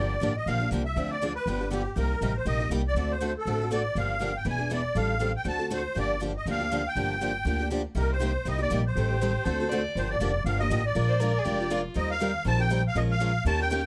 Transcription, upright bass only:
0, 0, Header, 1, 2, 480
1, 0, Start_track
1, 0, Key_signature, -2, "minor"
1, 0, Tempo, 249896
1, 1838, Time_signature, 4, 2, 24, 8
1, 26624, End_track
2, 0, Start_track
2, 0, Title_t, "Upright bass"
2, 0, Program_c, 0, 32
2, 0, Note_on_c, 0, 31, 74
2, 300, Note_off_c, 0, 31, 0
2, 409, Note_on_c, 0, 33, 64
2, 813, Note_off_c, 0, 33, 0
2, 886, Note_on_c, 0, 34, 67
2, 1291, Note_off_c, 0, 34, 0
2, 1373, Note_on_c, 0, 36, 71
2, 1774, Note_off_c, 0, 36, 0
2, 1844, Note_on_c, 0, 38, 75
2, 2610, Note_off_c, 0, 38, 0
2, 2800, Note_on_c, 0, 31, 74
2, 3567, Note_off_c, 0, 31, 0
2, 3768, Note_on_c, 0, 36, 77
2, 4148, Note_off_c, 0, 36, 0
2, 4242, Note_on_c, 0, 33, 63
2, 4648, Note_off_c, 0, 33, 0
2, 4712, Note_on_c, 0, 34, 68
2, 5122, Note_off_c, 0, 34, 0
2, 5185, Note_on_c, 0, 36, 66
2, 5598, Note_off_c, 0, 36, 0
2, 5659, Note_on_c, 0, 38, 73
2, 6434, Note_off_c, 0, 38, 0
2, 6637, Note_on_c, 0, 33, 70
2, 7405, Note_off_c, 0, 33, 0
2, 7593, Note_on_c, 0, 31, 77
2, 8363, Note_off_c, 0, 31, 0
2, 8548, Note_on_c, 0, 28, 76
2, 9320, Note_off_c, 0, 28, 0
2, 9506, Note_on_c, 0, 33, 73
2, 10279, Note_off_c, 0, 33, 0
2, 10466, Note_on_c, 0, 38, 82
2, 11240, Note_off_c, 0, 38, 0
2, 11444, Note_on_c, 0, 31, 73
2, 12211, Note_off_c, 0, 31, 0
2, 12401, Note_on_c, 0, 38, 70
2, 13169, Note_off_c, 0, 38, 0
2, 13360, Note_on_c, 0, 31, 77
2, 14129, Note_off_c, 0, 31, 0
2, 14308, Note_on_c, 0, 38, 66
2, 15082, Note_off_c, 0, 38, 0
2, 15265, Note_on_c, 0, 36, 76
2, 16040, Note_off_c, 0, 36, 0
2, 16235, Note_on_c, 0, 36, 76
2, 16646, Note_off_c, 0, 36, 0
2, 16723, Note_on_c, 0, 34, 75
2, 17131, Note_off_c, 0, 34, 0
2, 17199, Note_on_c, 0, 33, 77
2, 17968, Note_off_c, 0, 33, 0
2, 18163, Note_on_c, 0, 38, 85
2, 18930, Note_off_c, 0, 38, 0
2, 19119, Note_on_c, 0, 31, 81
2, 19504, Note_off_c, 0, 31, 0
2, 19586, Note_on_c, 0, 29, 74
2, 20001, Note_off_c, 0, 29, 0
2, 20062, Note_on_c, 0, 31, 76
2, 20478, Note_off_c, 0, 31, 0
2, 20553, Note_on_c, 0, 33, 76
2, 20965, Note_off_c, 0, 33, 0
2, 21038, Note_on_c, 0, 34, 81
2, 21807, Note_off_c, 0, 34, 0
2, 22004, Note_on_c, 0, 29, 72
2, 22770, Note_off_c, 0, 29, 0
2, 22964, Note_on_c, 0, 39, 78
2, 23730, Note_off_c, 0, 39, 0
2, 23917, Note_on_c, 0, 34, 81
2, 24686, Note_off_c, 0, 34, 0
2, 24879, Note_on_c, 0, 34, 85
2, 25647, Note_off_c, 0, 34, 0
2, 25830, Note_on_c, 0, 39, 83
2, 26601, Note_off_c, 0, 39, 0
2, 26624, End_track
0, 0, End_of_file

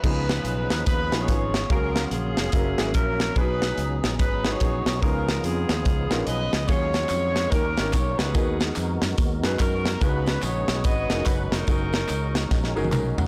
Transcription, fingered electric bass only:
0, 0, Header, 1, 2, 480
1, 0, Start_track
1, 0, Tempo, 415800
1, 40, Time_signature, 4, 2, 24, 8
1, 15324, End_track
2, 0, Start_track
2, 0, Title_t, "Fingered electric bass"
2, 0, Program_c, 0, 33
2, 44, Note_on_c, 0, 37, 114
2, 451, Note_off_c, 0, 37, 0
2, 513, Note_on_c, 0, 35, 99
2, 767, Note_off_c, 0, 35, 0
2, 812, Note_on_c, 0, 39, 95
2, 970, Note_off_c, 0, 39, 0
2, 1002, Note_on_c, 0, 39, 99
2, 1253, Note_off_c, 0, 39, 0
2, 1301, Note_on_c, 0, 34, 77
2, 1455, Note_off_c, 0, 34, 0
2, 1482, Note_on_c, 0, 32, 97
2, 1889, Note_off_c, 0, 32, 0
2, 1963, Note_on_c, 0, 37, 114
2, 2369, Note_off_c, 0, 37, 0
2, 2440, Note_on_c, 0, 34, 94
2, 2691, Note_off_c, 0, 34, 0
2, 2738, Note_on_c, 0, 29, 82
2, 2893, Note_off_c, 0, 29, 0
2, 2923, Note_on_c, 0, 30, 100
2, 3172, Note_off_c, 0, 30, 0
2, 3226, Note_on_c, 0, 32, 89
2, 3377, Note_off_c, 0, 32, 0
2, 3399, Note_on_c, 0, 34, 93
2, 3806, Note_off_c, 0, 34, 0
2, 3880, Note_on_c, 0, 35, 113
2, 4287, Note_off_c, 0, 35, 0
2, 4360, Note_on_c, 0, 37, 100
2, 4611, Note_off_c, 0, 37, 0
2, 4654, Note_on_c, 0, 34, 92
2, 4843, Note_off_c, 0, 34, 0
2, 4843, Note_on_c, 0, 32, 101
2, 5249, Note_off_c, 0, 32, 0
2, 5323, Note_on_c, 0, 34, 102
2, 5573, Note_off_c, 0, 34, 0
2, 5612, Note_on_c, 0, 35, 108
2, 5804, Note_off_c, 0, 35, 0
2, 5804, Note_on_c, 0, 37, 102
2, 6211, Note_off_c, 0, 37, 0
2, 6278, Note_on_c, 0, 41, 88
2, 6530, Note_off_c, 0, 41, 0
2, 6574, Note_on_c, 0, 39, 90
2, 6732, Note_off_c, 0, 39, 0
2, 6763, Note_on_c, 0, 37, 103
2, 7013, Note_off_c, 0, 37, 0
2, 7056, Note_on_c, 0, 34, 82
2, 7213, Note_off_c, 0, 34, 0
2, 7241, Note_on_c, 0, 35, 95
2, 7493, Note_off_c, 0, 35, 0
2, 7540, Note_on_c, 0, 37, 94
2, 7695, Note_off_c, 0, 37, 0
2, 7719, Note_on_c, 0, 39, 101
2, 8128, Note_off_c, 0, 39, 0
2, 8204, Note_on_c, 0, 41, 115
2, 8612, Note_off_c, 0, 41, 0
2, 8682, Note_on_c, 0, 39, 103
2, 8934, Note_off_c, 0, 39, 0
2, 8983, Note_on_c, 0, 32, 85
2, 9138, Note_off_c, 0, 32, 0
2, 9162, Note_on_c, 0, 35, 101
2, 9415, Note_off_c, 0, 35, 0
2, 9461, Note_on_c, 0, 37, 109
2, 9617, Note_off_c, 0, 37, 0
2, 9638, Note_on_c, 0, 39, 108
2, 10049, Note_off_c, 0, 39, 0
2, 10126, Note_on_c, 0, 41, 97
2, 10377, Note_off_c, 0, 41, 0
2, 10419, Note_on_c, 0, 42, 94
2, 10576, Note_off_c, 0, 42, 0
2, 10598, Note_on_c, 0, 39, 96
2, 10897, Note_off_c, 0, 39, 0
2, 10897, Note_on_c, 0, 42, 90
2, 11055, Note_off_c, 0, 42, 0
2, 11079, Note_on_c, 0, 42, 99
2, 11490, Note_off_c, 0, 42, 0
2, 11559, Note_on_c, 0, 37, 114
2, 11970, Note_off_c, 0, 37, 0
2, 12038, Note_on_c, 0, 34, 104
2, 12293, Note_off_c, 0, 34, 0
2, 12336, Note_on_c, 0, 35, 98
2, 12495, Note_off_c, 0, 35, 0
2, 12523, Note_on_c, 0, 32, 97
2, 12775, Note_off_c, 0, 32, 0
2, 12816, Note_on_c, 0, 29, 89
2, 12975, Note_off_c, 0, 29, 0
2, 13002, Note_on_c, 0, 30, 95
2, 13255, Note_off_c, 0, 30, 0
2, 13295, Note_on_c, 0, 29, 112
2, 13454, Note_off_c, 0, 29, 0
2, 13478, Note_on_c, 0, 30, 110
2, 13889, Note_off_c, 0, 30, 0
2, 13970, Note_on_c, 0, 37, 99
2, 14375, Note_off_c, 0, 37, 0
2, 14440, Note_on_c, 0, 34, 99
2, 14693, Note_off_c, 0, 34, 0
2, 14739, Note_on_c, 0, 30, 83
2, 14895, Note_off_c, 0, 30, 0
2, 14925, Note_on_c, 0, 35, 103
2, 15176, Note_off_c, 0, 35, 0
2, 15212, Note_on_c, 0, 37, 107
2, 15324, Note_off_c, 0, 37, 0
2, 15324, End_track
0, 0, End_of_file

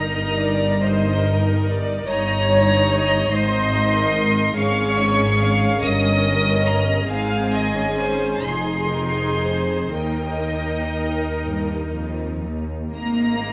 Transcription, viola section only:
0, 0, Header, 1, 2, 480
1, 0, Start_track
1, 0, Key_signature, -4, "major"
1, 0, Tempo, 836820
1, 1195, Time_signature, 6, 3, 24, 8
1, 4071, Tempo, 917431
1, 5031, Tempo, 1010101
1, 6471, Tempo, 974026
1, 6951, Tempo, 877193
1, 7274, End_track
2, 0, Start_track
2, 0, Title_t, "Viola section"
2, 0, Program_c, 0, 48
2, 0, Note_on_c, 0, 63, 82
2, 0, Note_on_c, 0, 70, 81
2, 453, Note_off_c, 0, 63, 0
2, 455, Note_off_c, 0, 70, 0
2, 467, Note_on_c, 0, 70, 78
2, 469, Note_on_c, 0, 63, 82
2, 1180, Note_off_c, 0, 70, 0
2, 1181, Note_off_c, 0, 63, 0
2, 1193, Note_on_c, 0, 63, 92
2, 1193, Note_on_c, 0, 73, 92
2, 1888, Note_off_c, 0, 63, 0
2, 1888, Note_off_c, 0, 73, 0
2, 1897, Note_on_c, 0, 63, 86
2, 1898, Note_on_c, 0, 72, 84
2, 2259, Note_off_c, 0, 72, 0
2, 2260, Note_on_c, 0, 70, 86
2, 2603, Note_off_c, 0, 63, 0
2, 2615, Note_on_c, 0, 61, 96
2, 2618, Note_on_c, 0, 68, 95
2, 2620, Note_off_c, 0, 70, 0
2, 3326, Note_off_c, 0, 61, 0
2, 3327, Note_off_c, 0, 68, 0
2, 3339, Note_on_c, 0, 61, 92
2, 3339, Note_on_c, 0, 70, 86
2, 4053, Note_off_c, 0, 61, 0
2, 4066, Note_on_c, 0, 68, 91
2, 4068, Note_off_c, 0, 70, 0
2, 4069, Note_on_c, 0, 60, 86
2, 4410, Note_off_c, 0, 60, 0
2, 4417, Note_on_c, 0, 61, 81
2, 4764, Note_off_c, 0, 68, 0
2, 4775, Note_on_c, 0, 68, 81
2, 4777, Note_on_c, 0, 63, 81
2, 4779, Note_off_c, 0, 61, 0
2, 5492, Note_off_c, 0, 68, 0
2, 5507, Note_off_c, 0, 63, 0
2, 5510, Note_on_c, 0, 70, 76
2, 5513, Note_on_c, 0, 63, 79
2, 6828, Note_off_c, 0, 63, 0
2, 6846, Note_off_c, 0, 70, 0
2, 6946, Note_on_c, 0, 60, 70
2, 6947, Note_on_c, 0, 56, 68
2, 7274, Note_off_c, 0, 56, 0
2, 7274, Note_off_c, 0, 60, 0
2, 7274, End_track
0, 0, End_of_file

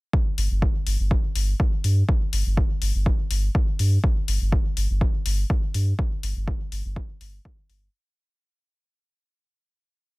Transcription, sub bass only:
0, 0, Header, 1, 2, 480
1, 0, Start_track
1, 0, Tempo, 487805
1, 133, Time_signature, 4, 2, 24, 8
1, 10018, End_track
2, 0, Start_track
2, 0, Title_t, "Sub bass"
2, 0, Program_c, 0, 38
2, 372, Note_on_c, 0, 31, 91
2, 470, Note_off_c, 0, 31, 0
2, 504, Note_on_c, 0, 31, 92
2, 674, Note_off_c, 0, 31, 0
2, 851, Note_on_c, 0, 31, 77
2, 949, Note_off_c, 0, 31, 0
2, 985, Note_on_c, 0, 31, 94
2, 1155, Note_off_c, 0, 31, 0
2, 1331, Note_on_c, 0, 31, 82
2, 1515, Note_off_c, 0, 31, 0
2, 1812, Note_on_c, 0, 43, 87
2, 1995, Note_off_c, 0, 43, 0
2, 2291, Note_on_c, 0, 31, 91
2, 2390, Note_off_c, 0, 31, 0
2, 2426, Note_on_c, 0, 31, 96
2, 2595, Note_off_c, 0, 31, 0
2, 2772, Note_on_c, 0, 31, 77
2, 2870, Note_off_c, 0, 31, 0
2, 2905, Note_on_c, 0, 31, 89
2, 3075, Note_off_c, 0, 31, 0
2, 3252, Note_on_c, 0, 31, 78
2, 3435, Note_off_c, 0, 31, 0
2, 3733, Note_on_c, 0, 43, 91
2, 3916, Note_off_c, 0, 43, 0
2, 4213, Note_on_c, 0, 31, 95
2, 4310, Note_off_c, 0, 31, 0
2, 4345, Note_on_c, 0, 31, 93
2, 4515, Note_off_c, 0, 31, 0
2, 4693, Note_on_c, 0, 31, 81
2, 4790, Note_off_c, 0, 31, 0
2, 4827, Note_on_c, 0, 31, 98
2, 4996, Note_off_c, 0, 31, 0
2, 5174, Note_on_c, 0, 31, 84
2, 5356, Note_off_c, 0, 31, 0
2, 5653, Note_on_c, 0, 43, 89
2, 5836, Note_off_c, 0, 43, 0
2, 6133, Note_on_c, 0, 31, 99
2, 6230, Note_off_c, 0, 31, 0
2, 6264, Note_on_c, 0, 31, 96
2, 6434, Note_off_c, 0, 31, 0
2, 6612, Note_on_c, 0, 31, 78
2, 6710, Note_off_c, 0, 31, 0
2, 6745, Note_on_c, 0, 31, 97
2, 6915, Note_off_c, 0, 31, 0
2, 7092, Note_on_c, 0, 31, 99
2, 7275, Note_off_c, 0, 31, 0
2, 7572, Note_on_c, 0, 31, 82
2, 7755, Note_off_c, 0, 31, 0
2, 10018, End_track
0, 0, End_of_file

